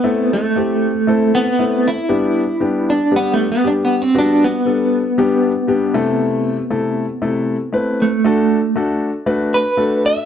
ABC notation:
X:1
M:4/4
L:1/8
Q:1/4=117
K:G
V:1 name="Grand piano"
[A,CEA] z [A,CEG] z [A,CEA] z [A,CEA] z | [G,B,DG] z [G,B,DG] z [G,B,DG] z [G,B,DG] z | [G,B,DF] z [G,B,DA] z [G,B,DG] z [G,B,DG] [C,A,EA]- | [C,A,EA] z [C,A,EA] z [C,A,EA] z [A,CEB] z |
[A,DFA] z [A,DFA] z [A,DFB] z [A,DFA] z |]
V:2 name="Clean electric guitar"
B, A,4 B,2 E- | E3 D (3B, A, B, (3D B, C | D B,6- B,- | B,6- B, A,- |
A,2 z3 B2 e |]